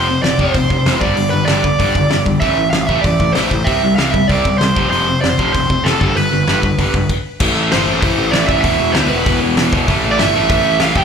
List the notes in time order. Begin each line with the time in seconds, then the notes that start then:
Already playing: F1 C5
0.09 F2 C3
0.23 F1 F2 C3 D5, snare, open hi-hat
0.38 F1 F2 C3 F3 C5, kick
0.54 F1 F2 C3, kick, open hi-hat
0.70 F1 F2 C3, kick
0.86 F1 F2 C3 F3, snare, open hi-hat
1.01 G1 G2 D3 G3 D5, kick
1.17 G1 G2 D3, open hi-hat
1.30 G1 G2 D3 B4
1.46 G1 G2 D3 G3 D5, snare, open hi-hat
1.64 G2 D3, kick
1.79 G1 G2 D3 G3, kick, open hi-hat
1.95 G1 G2 D3, kick
2.09 G1 G2 D3, snare, open hi-hat
2.25 G1 G2 D3, kick
2.40 A1 A2 E3 A3 E5, kick, open hi-hat
2.57 A2 E3
2.70 A1 A2 E3 F5, snare, open hi-hat
2.87 A1 A2 E3 A3 E5, kick
3.01 A1 A2 D5, kick, open hi-hat
3.05 E3
3.20 A1 A2 E3, kick
3.32 A1 A2 E3 C5, snare, open hi-hat
3.37 A3
3.51 A1 A2 E3, kick
3.64 C2 C3 G3 C4 E5, kick, open hi-hat
3.83 C2 C3 G3
3.96 C2 C3 G3 C4 F5, snare, open hi-hat
4.11 C3 G3 E5, kick
4.28 C2 C3 G3 C4 D5, kick, open hi-hat
4.45 C2 C3 G3, kick
4.58 C2 C3 G3 C5, snare, open hi-hat
4.75 F1 F2 C3 F3, kick
4.90 F1 F2 C3 F3 C5, open hi-hat
5.07 F2 C3
5.21 F1 F2 C3 D5, snare, open hi-hat
5.29 C5
5.38 F1 F2 C3 F3, kick
5.52 F1 F2 C3 C5, kick, open hi-hat
5.69 F1 F2 C3, kick
5.84 F1 F2 C3 F3 A4, snare, open hi-hat
6.00 G1 G2 D3 G3 A4, kick
6.16 G1 G2 D3 B4, open hi-hat
6.32 G1 G2 D3
6.47 G1 G2 D3 G3, snare, open hi-hat
6.63 G2 D3, kick
6.78 G1 G2 D3 G3, kick, open hi-hat
6.94 G1 G2 D3, kick
7.09 kick, crash
7.40 A1 A2 E3 A3, kick, crash
7.56 A1
7.71 G1 A2 E3 A3 C5, snare, open hi-hat
7.86 A1 A2 E3 A3
8.01 A1 A2 E3 A3 C5, kick, open hi-hat
8.18 A1
8.31 A1 A2 E3 A3 D5, snare, open hi-hat
8.46 A1 A2 E3 A3 E5, kick
8.61 E1 E2 B2 E3 E5, kick, open hi-hat
8.80 E1
8.92 D2 E2 B2 E3 C5, snare, open hi-hat
9.08 E1 E2 B2 E3 B4
9.25 E1 E2 B2 E3, kick, open hi-hat
9.42 E1
9.56 E1 E2 B2 E3, snare, open hi-hat
9.72 E1 E2 B2 E3, kick
9.88 A1 A2 E3 A3, kick, open hi-hat
10.04 A1
10.11 D5
10.18 G1 A2 E3 A3 E5, snare, open hi-hat
10.35 A1 A2 E3 A3
10.49 A1 A2 E3 A3 E5, kick, open hi-hat
10.65 A1
10.80 A1 A2 E3 A3 F5, snare, open hi-hat
10.96 A1 A2 E3 A3 G5, kick